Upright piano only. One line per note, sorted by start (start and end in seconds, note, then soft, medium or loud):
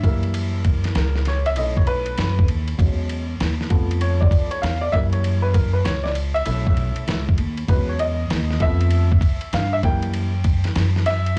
0.00 1.52 E3 medium
0.00 1.53 G3 medium
0.00 0.61 E5 medium
0.04 1.53 A#3 medium
0.97 1.28 A#4 medium
1.28 1.47 C#5 loud
1.46 1.57 E5 loud
1.56 2.75 A3 soft
1.56 2.76 C#4 medium
1.56 2.75 E4 medium
1.56 1.77 D#5 medium
1.77 1.88 C#5 medium
1.87 2.44 B4 loud
2.78 3.22 F#3 soft
2.78 3.23 G#3 soft
2.78 3.23 C#4 medium
3.70 4.58 F3 medium
3.70 4.59 A3 medium
3.70 4.59 B3 medium
4.01 4.21 C#5 medium
4.20 4.49 D5 medium
4.51 4.63 C#5 loud
4.62 4.82 F5 loud
4.81 4.93 D5 loud
4.92 5.81 E3 medium
4.92 5.81 G3 medium
4.92 5.82 A#3 medium
4.92 4.97 E5 loud
5.12 5.44 C#5 medium
5.42 5.54 B4 medium
5.54 5.74 A#4 medium
5.73 5.85 B4 medium
5.84 6.05 C#5 loud
6.03 6.10 D5 medium
6.34 7.23 E5 loud
6.45 7.65 A3 medium
6.45 7.65 C#4 medium
6.45 7.64 E4 medium
7.68 8.12 F#3 medium
7.68 8.13 G#3 soft
7.68 8.13 C#4 medium
7.68 7.89 B4 medium
7.89 8.00 C#5 medium
7.99 8.62 D#5 loud
8.60 9.04 F3 medium
8.60 9.04 A3 medium
8.60 9.05 B3 medium
8.60 9.56 E5 loud
9.54 9.73 F5 loud
9.73 9.78 E5 loud
9.83 10.27 E3 medium
9.83 10.27 G3 medium
9.83 10.27 A#3 medium
9.83 10.72 G5 loud
11.06 11.39 E5 loud